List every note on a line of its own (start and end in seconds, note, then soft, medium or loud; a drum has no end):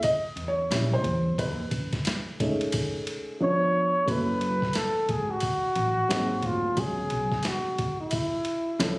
0.03 0.50 D#5 loud
0.03 kick loud
0.03 ride medium
0.36 0.62 E2 medium
0.36 ride medium
0.48 0.95 C#5 loud
0.71 1.04 A#1 loud
0.71 1.36 G3 medium
0.71 1.36 C#4 medium
0.71 1.36 E4 medium
0.71 snare loud
0.71 hi-hat pedal medium
0.71 ride medium
0.93 1.40 C5 medium
1.04 1.30 E2 loud
1.04 kick medium
1.04 ride medium
1.38 1.64 D#2 loud
1.38 2.36 B4 medium
1.38 kick loud
1.38 ride medium
1.71 1.87 C#2 medium
1.71 kick loud
1.71 ride medium
1.93 kick loud
1.93 snare soft
1.93 ride soft
2.05 snare medium
2.05 hi-hat pedal medium
2.05 ride medium
2.40 3.37 G#3 medium
2.40 3.37 A3 medium
2.40 3.37 C#4 medium
2.40 3.37 D#4 medium
2.40 kick loud
2.40 ride medium
2.61 ride soft
2.72 kick loud
2.72 ride medium
3.07 ride medium
3.40 3.88 F3 medium
3.40 3.89 B3 medium
3.40 3.89 D4 medium
3.40 4.11 C#5 loud
4.06 4.59 F#1 loud
4.06 6.05 F#3 medium
4.06 6.06 A3 medium
4.06 6.06 C#4 medium
4.06 6.07 E4 medium
4.06 6.07 A4 medium
4.06 4.78 B4 loud
4.06 kick loud
4.06 ride medium
4.41 ride medium
4.62 kick medium
4.62 snare soft
4.73 5.12 A4 medium
4.73 snare medium
4.73 hi-hat pedal soft
4.73 ride medium
5.09 5.35 G#1 medium
5.09 5.32 G#4 medium
5.09 kick loud
5.09 ride medium
5.31 6.47 F#4 loud
5.40 kick medium
5.40 ride medium
5.75 6.02 A1 medium
5.75 ride medium
6.09 6.36 G#1 medium
6.09 6.74 F#3 medium
6.09 6.77 A#3 medium
6.09 6.78 C4 medium
6.09 6.78 D#4 medium
6.09 6.78 G#4 medium
6.09 snare loud
6.09 hi-hat pedal medium
6.09 ride medium
6.42 6.69 D2 medium
6.42 6.81 F4 medium
6.42 kick medium
6.42 ride medium
6.76 7.03 C#2 loud
6.76 8.75 F#3 medium
6.76 8.75 G#3 medium
6.76 8.76 B3 medium
6.76 8.76 C#4 medium
6.76 8.77 G#4 medium
6.76 7.46 G#4 medium
6.76 kick loud
6.76 ride medium
7.10 7.27 B1 medium
7.10 ride medium
7.32 kick medium
7.32 snare soft
7.43 7.97 F#4 medium
7.43 snare medium
7.43 hi-hat pedal soft
7.43 ride medium
7.78 kick medium
7.78 ride medium
8.01 8.99 E4 medium
8.11 kick medium
8.11 ride medium
8.45 ride medium
8.79 8.99 C#2 loud
8.79 8.99 F3 medium
8.79 8.99 B3 medium
8.79 8.99 C#4 medium
8.79 8.99 E4 medium
8.79 8.99 A4 medium
8.79 snare medium
8.79 hi-hat pedal soft
8.79 ride medium